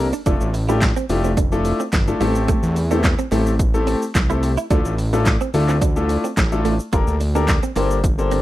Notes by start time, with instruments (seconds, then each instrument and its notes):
Already playing: analog synth bass C2, impact
0.13 clean electric guitar D4, shaker
0.26 analog synth bass F1, grand piano A3 D4 E4 F4 A4, clean electric guitar D4, kick, closed hi-hat, shaker
0.41 analog synth bass A1, shaker
0.54 muted clean electric guitar stroke, open hi-hat, shaker
0.69 grand piano A3 D4 E4 F4 G4, clean electric guitar E4, shaker
0.82 kick, snare, clap, closed hi-hat, shaker
0.96 clean electric guitar C4, shaker
1.09 analog synth bass F1, grand piano A3 D4 E4 F4 G4, muted clean electric guitar stroke, open hi-hat, shaker
1.24 clean electric guitar C4, shaker
1.37 clean electric guitar D4, kick, closed hi-hat, shaker
1.52 grand piano A3 D4 E4 F4 A4, shaker
1.65 muted clean electric guitar stroke, open hi-hat, shaker
1.80 clean electric guitar C4, shaker
1.93 analog synth bass G1, kick, snare, clap, closed hi-hat, shaker
2.07 grand piano A3 D4 E4 F4 A4, shaker
2.20 analog synth bass A1, grand piano A3 C4 E4 G4 A4, clean electric guitar A3, open hi-hat, shaker
2.35 shaker
2.48 clean electric guitar A3, kick, closed hi-hat, shaker
2.63 analog synth bass E2, shaker
2.76 muted clean electric guitar stroke, open hi-hat, shaker
2.91 grand piano A3 C4 E4 G4 A4, clean electric guitar D4, shaker
3.04 muted clean electric guitar stroke, kick, snare, clap, closed hi-hat, shaker
3.19 clean electric guitar C4, shaker
3.32 analog synth bass A1, grand piano A3 C4 E4 G4 A4, clean electric guitar A3, clap, open hi-hat, shaker
3.46 shaker
3.59 kick, closed hi-hat, shaker
3.74 grand piano A3 C4 E4 G4 A4, shaker
3.87 clean electric guitar C4, open hi-hat, shaker
4.02 shaker
4.15 analog synth bass C2, kick, snare, clap, closed hi-hat, shaker
4.30 grand piano A3 C4 E4 G4 A4, clean electric guitar E4, shaker
4.43 muted clean electric guitar stroke, open hi-hat, shaker
4.57 clean electric guitar E4, shaker
4.70 analog synth bass D2, grand piano A3 D4 E4 F4 A4, clean electric guitar D4, kick, closed hi-hat, shaker
4.85 analog synth bass A1, shaker
4.98 muted clean electric guitar stroke, open hi-hat, shaker
5.13 grand piano A3 D4 E4 F4 A4, clean electric guitar D4, shaker
5.26 kick, snare, clap, closed hi-hat, shaker
5.41 clean electric guitar C4, shaker
5.54 analog synth bass D2, grand piano A3 D4 E4 F4 A4, muted clean electric guitar stroke, open hi-hat, shaker
5.69 clean electric guitar C4, clap, shaker
5.82 clean electric guitar D4, kick, closed hi-hat, shaker
5.96 grand piano A3 D4 E4 F4 A4, shaker
6.09 muted clean electric guitar stroke, open hi-hat, shaker
6.24 clean electric guitar C4, shaker
6.37 analog synth bass A1, kick, snare, clap, closed hi-hat, shaker
6.52 grand piano A3 D4 E4 F4 A4, shaker
6.65 clean electric guitar A3, open hi-hat, shaker
6.80 shaker
6.92 analog synth bass G1, grand piano A#3 D4 G4 A4 A#4, clean electric guitar F4, kick, closed hi-hat, shaker
7.07 analog synth bass D2, shaker
7.21 muted clean electric guitar stroke, open hi-hat, shaker
7.35 grand piano A#3 D4 G4 A4 A#4, clean electric guitar D4, shaker
7.48 muted clean electric guitar stroke, kick, snare, clap, closed hi-hat, shaker
7.63 clean electric guitar C4, shaker
7.76 analog synth bass G1, grand piano A#3 D4 G4 A4 C5, clean electric guitar A#3, clap, open hi-hat, shaker
7.91 shaker
8.04 kick, closed hi-hat, shaker
8.18 grand piano A#3 D4 G4 A4 C5, shaker
8.31 clean electric guitar C4, open hi-hat, shaker